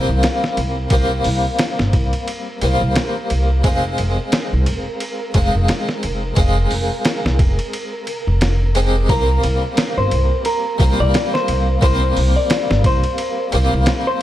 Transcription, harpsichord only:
Already playing: G3 A#3 C4 F4
0.91 G3 A#3 C4 F4
2.62 G3 A#3 C4
2.66 F4
3.64 G#3 C4 D#4 F4
5.34 G#3 C4 D#4 F4
6.36 G#3 C4 D#4 F4
8.75 G#3 C4 D#4 G4
9.08 G3 A#3 C4 F4
10.78 G3 A#3 C4 F4
11.81 G3 A#3 C4 F4
13.52 G3 A#3 C4 F4

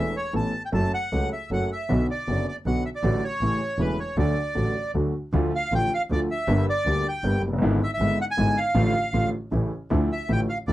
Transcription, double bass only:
Already playing: E1
0.34 A1
0.74 F#1
1.12 C#2
1.51 F#1
1.90 B1
2.28 F#1
2.66 B1
3.03 A1
3.41 A1
3.79 E1
4.17 D2
4.56 A1
4.95 D2
5.33 D2
5.72 A1
6.10 D2
6.48 G1
6.85 D2
7.24 G1
7.42 F#1
7.61 G#1
7.99 G#1
8.38 G#1
8.75 A1
9.14 A1
9.53 A1
9.91 D2
10.30 A1
10.68 D2

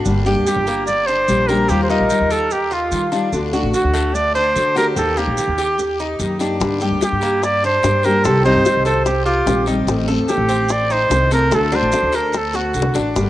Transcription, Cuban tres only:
Already playing: D4
0.26 G4
0.67 A#3
1.08 D4
1.49 A#4
1.70 A#3
1.90 D#4
2.30 A#4
2.71 F4
3.12 D4
3.53 F#4
3.94 A3
4.35 D4
4.76 G4
4.97 G3
5.17 A#3
5.58 G4
6.00 D#4
6.41 D4
6.82 G4
7.23 A#3
7.64 D4
8.04 C5
8.25 C4
8.46 D#4
8.86 C5
9.26 G4
9.67 D#4
10.08 A4
10.49 C4
10.90 D#4
11.32 A4
11.51 A3
11.72 D4
12.12 A4
12.54 F#4
12.95 D4

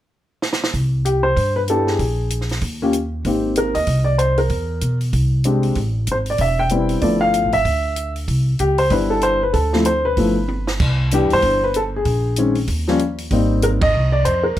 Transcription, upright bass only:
0.74 C2
1.37 G2
1.99 A#1
2.62 D#2
3.25 G#1
3.76 D#2
3.87 C2
4.50 E2
4.82 B2
5.13 C2
5.76 A1
6.07 G#1
6.39 E1
7.02 G1
7.44 A1
7.55 G#1
7.65 D2
8.28 C2
8.60 C#2
8.91 G1
9.54 D2
10.17 G1
10.80 C2
11.33 G2
11.43 G1
12.05 A#1
12.68 D#2
13.31 G#1
13.94 C2
14.25 F2

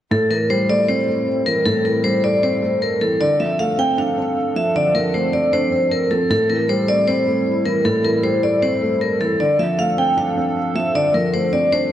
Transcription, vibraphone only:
0.11 A4
0.30 A#4
0.50 C5
0.69 D5
0.88 C5
1.46 A#4
1.66 A4
1.85 A#4
2.04 C5
2.24 D5
2.43 C5
2.82 A#4
3.01 A4
3.20 D5
3.40 E5
3.59 F5
3.79 G5
3.98 F5
4.56 E5
4.76 D5
4.95 A#4
5.14 C5
5.33 D5
5.53 C5
5.91 A#4
6.11 A4
6.31 A4
6.50 A#4
6.69 C5
6.88 D5
7.08 C5
7.66 A#4
7.85 A4
8.05 A#4
8.24 C5
8.44 D5
8.63 C5
9.01 A#4
9.21 A4
9.40 D5
9.59 E5
9.79 F5
9.98 G5
10.18 F5
10.76 E5
10.95 D5
11.14 A#4
11.34 C5
11.53 D5
11.72 C5

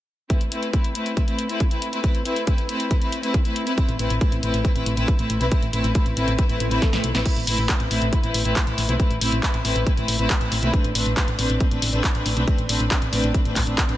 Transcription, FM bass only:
3.89 A1
3.99 A1
4.10 A1
4.32 A1
4.43 A1
4.54 A1
4.76 A1
4.86 A1
4.97 A1
5.19 A1
5.30 A1
5.41 B1
5.63 A1
5.73 A1
5.84 A1
6.06 A1
6.17 A1
6.28 A1
6.49 A1
6.60 A1
6.71 A1
6.93 A1
7.04 B1
7.15 A1
7.37 A1
7.47 A1
7.58 A1
7.80 A1
7.91 A1
8.02 A1
8.24 A1
8.34 A1
8.45 A1
8.67 A1
8.78 A1
8.89 B1
9.11 A1
9.21 A1
9.32 A1
9.54 A1
9.65 A1
9.76 A1
9.98 A1
10.08 A1
10.19 A1
10.41 A1
10.52 A1
10.63 B1
10.84 A1
10.95 A1
11.06 A1
11.28 A1
11.39 A1
11.50 A1
11.71 A1
11.82 A1
11.93 A1
12.15 A1
12.26 A1
12.37 B1
12.58 A1
12.69 A1
12.80 A1
13.02 A1
13.13 A1
13.24 A1
13.45 A1
13.56 A1
13.67 A1
13.89 A1

